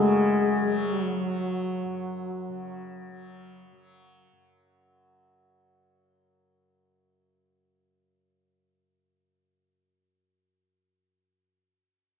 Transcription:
0, 0, Header, 1, 4, 480
1, 0, Start_track
1, 0, Tempo, 500000
1, 11704, End_track
2, 0, Start_track
2, 0, Title_t, "Tubular bells"
2, 0, Program_c, 0, 14
2, 0, Note_on_c, 0, 73, 43
2, 2621, Note_off_c, 0, 73, 0
2, 11704, End_track
3, 0, Start_track
3, 0, Title_t, "Bass flute"
3, 0, Program_c, 1, 73
3, 0, Note_on_c, 1, 56, 81
3, 842, Note_off_c, 1, 56, 0
3, 848, Note_on_c, 1, 54, 74
3, 3492, Note_off_c, 1, 54, 0
3, 11704, End_track
4, 0, Start_track
4, 0, Title_t, "Tanpura"
4, 0, Program_c, 2, 104
4, 0, Note_on_c, 2, 42, 54
4, 0, Note_on_c, 2, 49, 52
4, 0, Note_on_c, 2, 54, 50
4, 601, Note_off_c, 2, 54, 0
4, 601, Note_on_c, 2, 54, 52
4, 1182, Note_off_c, 2, 54, 0
4, 1182, Note_on_c, 2, 54, 51
4, 1767, Note_off_c, 2, 42, 0
4, 1771, Note_on_c, 2, 42, 52
4, 2383, Note_off_c, 2, 49, 0
4, 2387, Note_on_c, 2, 49, 54
4, 2972, Note_off_c, 2, 54, 0
4, 2972, Note_on_c, 2, 54, 48
4, 3576, Note_off_c, 2, 54, 0
4, 3576, Note_on_c, 2, 54, 51
4, 4151, Note_off_c, 2, 42, 0
4, 4155, Note_on_c, 2, 42, 49
4, 9251, Note_off_c, 2, 49, 0
4, 10077, Note_off_c, 2, 54, 0
4, 11019, Note_off_c, 2, 42, 0
4, 11704, End_track
0, 0, End_of_file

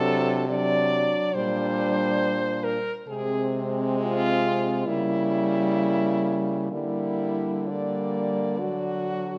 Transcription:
0, 0, Header, 1, 5, 480
1, 0, Start_track
1, 0, Tempo, 869565
1, 1702, Time_signature, 4, 2, 24, 8
1, 1702, Tempo, 925926
1, 2182, Tempo, 882353
1, 3142, Tempo, 958466
1, 4102, Tempo, 930233
1, 4975, End_track
2, 0, Start_track
2, 0, Title_t, "French horn"
2, 0, Program_c, 0, 60
2, 0, Note_on_c, 0, 69, 127
2, 267, Note_off_c, 0, 69, 0
2, 270, Note_on_c, 0, 74, 126
2, 747, Note_on_c, 0, 72, 127
2, 755, Note_off_c, 0, 74, 0
2, 1456, Note_on_c, 0, 70, 113
2, 1464, Note_off_c, 0, 72, 0
2, 1627, Note_off_c, 0, 70, 0
2, 1699, Note_on_c, 0, 68, 112
2, 2023, Note_off_c, 0, 68, 0
2, 2180, Note_on_c, 0, 65, 126
2, 2651, Note_on_c, 0, 64, 105
2, 2659, Note_off_c, 0, 65, 0
2, 3611, Note_off_c, 0, 64, 0
2, 3614, Note_on_c, 0, 64, 97
2, 4104, Note_on_c, 0, 74, 93
2, 4111, Note_off_c, 0, 64, 0
2, 4975, Note_off_c, 0, 74, 0
2, 4975, End_track
3, 0, Start_track
3, 0, Title_t, "French horn"
3, 0, Program_c, 1, 60
3, 0, Note_on_c, 1, 62, 89
3, 262, Note_off_c, 1, 62, 0
3, 265, Note_on_c, 1, 62, 84
3, 736, Note_off_c, 1, 62, 0
3, 745, Note_on_c, 1, 62, 95
3, 1529, Note_off_c, 1, 62, 0
3, 1702, Note_on_c, 1, 60, 84
3, 2646, Note_on_c, 1, 58, 80
3, 2654, Note_off_c, 1, 60, 0
3, 3605, Note_off_c, 1, 58, 0
3, 3608, Note_on_c, 1, 58, 65
3, 4088, Note_off_c, 1, 58, 0
3, 4097, Note_on_c, 1, 58, 82
3, 4572, Note_on_c, 1, 66, 98
3, 4580, Note_off_c, 1, 58, 0
3, 4975, Note_off_c, 1, 66, 0
3, 4975, End_track
4, 0, Start_track
4, 0, Title_t, "French horn"
4, 0, Program_c, 2, 60
4, 0, Note_on_c, 2, 54, 93
4, 272, Note_off_c, 2, 54, 0
4, 275, Note_on_c, 2, 54, 90
4, 745, Note_on_c, 2, 55, 97
4, 753, Note_off_c, 2, 54, 0
4, 1545, Note_off_c, 2, 55, 0
4, 1703, Note_on_c, 2, 56, 96
4, 2650, Note_on_c, 2, 55, 86
4, 2658, Note_off_c, 2, 56, 0
4, 3610, Note_off_c, 2, 55, 0
4, 3613, Note_on_c, 2, 55, 78
4, 4090, Note_off_c, 2, 55, 0
4, 4092, Note_on_c, 2, 55, 79
4, 4568, Note_off_c, 2, 55, 0
4, 4571, Note_on_c, 2, 54, 72
4, 4975, Note_off_c, 2, 54, 0
4, 4975, End_track
5, 0, Start_track
5, 0, Title_t, "French horn"
5, 0, Program_c, 3, 60
5, 0, Note_on_c, 3, 48, 100
5, 660, Note_off_c, 3, 48, 0
5, 754, Note_on_c, 3, 46, 89
5, 1534, Note_off_c, 3, 46, 0
5, 1699, Note_on_c, 3, 48, 92
5, 2632, Note_off_c, 3, 48, 0
5, 2651, Note_on_c, 3, 49, 85
5, 3597, Note_off_c, 3, 49, 0
5, 3614, Note_on_c, 3, 50, 76
5, 4975, Note_off_c, 3, 50, 0
5, 4975, End_track
0, 0, End_of_file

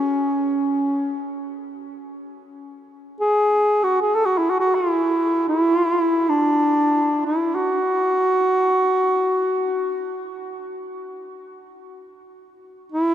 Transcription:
0, 0, Header, 1, 2, 480
1, 0, Start_track
1, 0, Tempo, 500000
1, 12618, End_track
2, 0, Start_track
2, 0, Title_t, "Bass clarinet"
2, 0, Program_c, 0, 71
2, 0, Note_on_c, 0, 61, 67
2, 1291, Note_off_c, 0, 61, 0
2, 3081, Note_on_c, 0, 68, 79
2, 3686, Note_on_c, 0, 66, 74
2, 3701, Note_off_c, 0, 68, 0
2, 3849, Note_off_c, 0, 66, 0
2, 3857, Note_on_c, 0, 68, 71
2, 3986, Note_on_c, 0, 69, 77
2, 4001, Note_off_c, 0, 68, 0
2, 4087, Note_on_c, 0, 66, 73
2, 4101, Note_off_c, 0, 69, 0
2, 4207, Note_on_c, 0, 64, 71
2, 4222, Note_off_c, 0, 66, 0
2, 4324, Note_on_c, 0, 66, 75
2, 4339, Note_off_c, 0, 64, 0
2, 4411, Note_off_c, 0, 66, 0
2, 4417, Note_on_c, 0, 66, 74
2, 4559, Note_on_c, 0, 64, 74
2, 4573, Note_off_c, 0, 66, 0
2, 5260, Note_off_c, 0, 64, 0
2, 5266, Note_on_c, 0, 64, 80
2, 6041, Note_on_c, 0, 62, 72
2, 6056, Note_off_c, 0, 64, 0
2, 6958, Note_off_c, 0, 62, 0
2, 6969, Note_on_c, 0, 64, 61
2, 7253, Note_on_c, 0, 66, 76
2, 7267, Note_off_c, 0, 64, 0
2, 9862, Note_off_c, 0, 66, 0
2, 12405, Note_on_c, 0, 64, 84
2, 12618, Note_off_c, 0, 64, 0
2, 12618, End_track
0, 0, End_of_file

